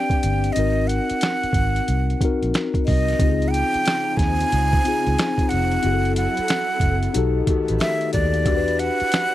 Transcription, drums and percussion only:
0.10 kick medium
0.10 closed hi-hat soft
0.23 closed hi-hat medium
0.44 closed hi-hat soft
0.56 closed hi-hat medium
0.89 closed hi-hat medium
1.10 closed hi-hat soft
1.21 finger snap medium
1.21 snare loud
1.21 closed hi-hat medium
1.43 closed hi-hat soft
1.53 kick medium
1.53 closed hi-hat medium
1.76 closed hi-hat soft
1.88 closed hi-hat medium
2.10 closed hi-hat soft
2.21 kick medium
2.21 closed hi-hat medium
2.43 closed hi-hat soft
2.54 finger snap medium
2.54 snare loud
2.54 closed hi-hat medium
2.74 kick medium
2.74 closed hi-hat soft
2.87 kick medium
2.87 open hi-hat soft
3.08 snare soft
3.08 closed hi-hat soft
3.19 kick loud
3.19 closed hi-hat medium
3.42 closed hi-hat soft
3.54 closed hi-hat medium
3.74 closed hi-hat soft
3.85 finger snap medium
3.85 snare loud
3.85 closed hi-hat medium
4.17 kick medium
4.17 snare soft
4.17 closed hi-hat medium
4.41 closed hi-hat soft
4.52 closed hi-hat medium
4.73 kick medium
4.85 closed hi-hat medium
5.07 closed hi-hat soft
5.18 finger snap medium
5.18 snare loud
5.18 closed hi-hat medium
5.38 kick medium
5.38 closed hi-hat soft
5.51 closed hi-hat medium
5.72 closed hi-hat soft
5.83 closed hi-hat medium
6.05 closed hi-hat soft
6.16 closed hi-hat medium
6.37 closed hi-hat soft
6.48 finger snap medium
6.48 snare loud
6.48 closed hi-hat medium
6.80 kick medium
6.80 closed hi-hat medium
7.03 closed hi-hat soft
7.14 closed hi-hat medium
7.47 kick medium
7.47 closed hi-hat medium
7.68 closed hi-hat soft
7.80 finger snap medium
7.80 snare loud
7.80 closed hi-hat medium
8.01 closed hi-hat soft
8.13 kick medium
8.13 closed hi-hat medium
8.34 closed hi-hat soft
8.45 kick loud
8.45 closed hi-hat medium
8.68 closed hi-hat soft
8.79 closed hi-hat medium
9.00 closed hi-hat soft
9.12 finger snap medium
9.12 snare loud
9.12 closed hi-hat medium

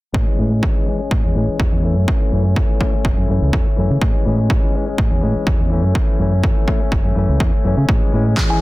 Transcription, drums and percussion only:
0.14 kick loud
0.63 kick loud
1.11 kick loud
1.60 kick loud
2.08 kick loud
2.56 kick loud
2.81 kick medium
3.05 kick loud
3.53 kick loud
4.02 kick loud
4.50 kick loud
4.98 kick loud
5.47 kick loud
5.95 kick loud
6.44 kick loud
6.68 kick medium
6.92 kick loud
7.40 kick loud
7.89 kick loud
8.37 kick loud
8.37 clap loud

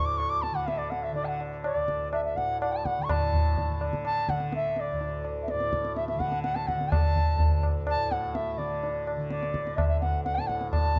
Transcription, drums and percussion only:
0.20 tabla na medium
0.44 tabla te medium
0.68 tabla te medium
0.92 tabla te medium
1.16 tabla tin medium
1.40 tabla na medium
1.64 tabla na medium
1.88 tabla ke medium
2.13 tabla na medium
2.38 tabla ke medium
2.62 tabla na medium
2.85 tabla ke medium
3.09 tabla na medium
3.09 tabla ge medium
3.34 tabla ge medium
3.57 tabla tin medium
3.57 tabla ge medium
3.81 tabla na medium
3.93 tabla ke medium
4.05 tabla na medium
4.29 tabla ke medium
4.40 tabla te soft
4.52 tabla te medium
4.76 tabla te medium
5.01 tabla tin medium
5.25 tabla na medium
5.48 tabla te medium
5.60 tabla te medium
5.73 tabla ke medium
5.85 tabla te medium
5.96 tabla te medium
6.08 tabla te medium
6.20 tabla ke medium
6.32 tabla te medium
6.44 tabla te medium
6.56 tabla te medium
6.68 tabla ke soft
6.81 tabla te medium
6.92 tabla na medium
6.92 tabla ge medium
7.16 tabla ge medium
7.39 tabla tin medium
7.39 tabla ge medium
7.63 tabla na medium
7.87 tabla na medium
8.11 tabla te medium
8.35 tabla te medium
8.59 tabla te medium
8.83 tabla tin medium
9.07 tabla na medium
9.30 tabla te medium
9.43 tabla te medium
9.54 tabla ke medium
9.67 tabla te medium
9.78 tabla na medium
9.78 tabla ge medium
10.02 tabla te medium
10.26 tabla te medium
10.38 tabla te medium
10.49 tabla ke medium
10.61 tabla te medium
10.73 tabla na medium
10.73 tabla ge medium
10.96 tabla ge medium

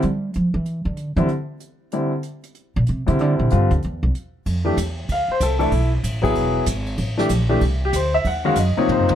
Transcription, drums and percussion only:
0.02 closed hi-hat soft
0.34 closed hi-hat medium
0.65 closed hi-hat soft
0.97 closed hi-hat soft
1.17 closed hi-hat soft
1.28 closed hi-hat soft
1.60 closed hi-hat soft
1.91 closed hi-hat soft
2.23 closed hi-hat soft
2.43 closed hi-hat soft
2.55 closed hi-hat soft
2.86 closed hi-hat medium
3.07 closed hi-hat soft
3.19 closed hi-hat soft
3.50 closed hi-hat medium
3.71 closed hi-hat soft
3.82 closed hi-hat soft
4.15 closed hi-hat medium
4.46 kick soft
4.46 ride medium
4.77 kick soft
4.77 hi-hat pedal medium
4.77 ride medium
5.09 kick soft
5.09 ride medium
5.40 kick soft
5.40 hi-hat pedal medium
5.40 ride medium
5.60 ride soft
5.71 kick soft
5.71 ride medium
6.04 kick soft
6.04 hi-hat pedal medium
6.04 ride medium
6.24 kick medium
6.24 ride medium
6.35 kick soft
6.35 ride medium
6.66 kick soft
6.66 hi-hat pedal medium
6.66 ride medium
6.86 ride medium
6.97 kick soft
6.97 ride medium
7.19 snare medium
7.29 kick soft
7.29 hi-hat pedal medium
7.29 ride medium
7.61 kick soft
7.61 ride medium
7.93 kick soft
7.93 hi-hat pedal medium
7.93 ride medium
8.25 kick soft
8.25 ride medium
8.55 kick soft
8.55 hi-hat pedal medium
8.55 ride medium
8.89 mid tom medium
9.09 mid tom medium

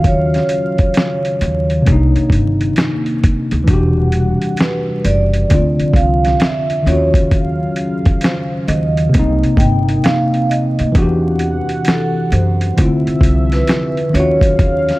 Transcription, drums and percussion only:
0.04 kick loud
0.04 closed hi-hat medium
0.34 snare soft
0.34 closed hi-hat soft
0.49 closed hi-hat medium
0.78 kick medium
0.78 closed hi-hat soft
0.94 snare loud
0.94 closed hi-hat medium
1.25 closed hi-hat soft
1.41 closed hi-hat medium
1.70 closed hi-hat soft
1.86 kick medium
1.86 closed hi-hat medium
2.16 closed hi-hat soft
2.30 kick medium
2.30 closed hi-hat medium
2.61 closed hi-hat soft
2.76 snare loud
2.76 closed hi-hat medium
3.06 closed hi-hat soft
3.24 kick medium
3.24 closed hi-hat medium
3.51 closed hi-hat medium
3.67 kick loud
3.67 closed hi-hat medium
4.12 closed hi-hat medium
4.42 closed hi-hat soft
4.57 snare loud
4.57 closed hi-hat medium
5.04 closed hi-hat medium
5.33 closed hi-hat soft
5.50 kick medium
5.50 closed hi-hat medium
5.80 closed hi-hat soft
5.94 kick medium
5.94 closed hi-hat medium
6.25 snare soft
6.25 closed hi-hat soft
6.40 snare loud
6.40 closed hi-hat medium
6.70 closed hi-hat soft
6.87 closed hi-hat medium
7.14 kick medium
7.14 closed hi-hat medium
7.31 kick loud
7.31 closed hi-hat medium
7.76 closed hi-hat medium
8.05 kick medium
8.05 closed hi-hat soft
8.21 snare loud
8.21 closed hi-hat medium
8.68 closed hi-hat medium
8.97 closed hi-hat soft
9.14 kick medium
9.14 closed hi-hat medium
9.43 closed hi-hat soft
9.57 kick medium
9.57 closed hi-hat medium
9.89 closed hi-hat soft
10.04 snare loud
10.04 closed hi-hat medium
10.34 closed hi-hat soft
10.51 closed hi-hat medium
10.79 closed hi-hat medium
10.95 kick loud
10.95 closed hi-hat medium
11.39 closed hi-hat medium
11.69 closed hi-hat soft
11.85 snare loud
11.85 closed hi-hat medium
12.32 closed hi-hat medium
12.61 closed hi-hat soft
12.78 kick medium
12.78 closed hi-hat medium
13.07 closed hi-hat soft
13.21 kick medium
13.21 closed hi-hat medium
13.52 snare soft
13.52 closed hi-hat soft
13.67 snare loud
13.67 closed hi-hat medium
13.97 closed hi-hat soft
14.15 closed hi-hat medium
14.41 kick medium
14.41 closed hi-hat medium
14.59 kick loud
14.59 closed hi-hat medium
14.89 snare soft
14.89 closed hi-hat soft

